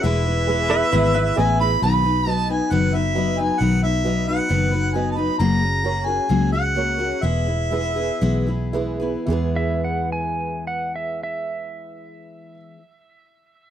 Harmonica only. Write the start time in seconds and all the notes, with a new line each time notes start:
0.03 E5
1.38 G#5
1.60 B5
1.83 B5
2.30 A5
2.50 G#5
2.72 F#5
2.94 E5
3.39 G#5
3.60 F#5
3.83 E5
4.28 F#5
4.95 G#5
5.11 A5
5.17 B5
5.39 A#5
6.07 G#5
6.52 F#5
7.23 E5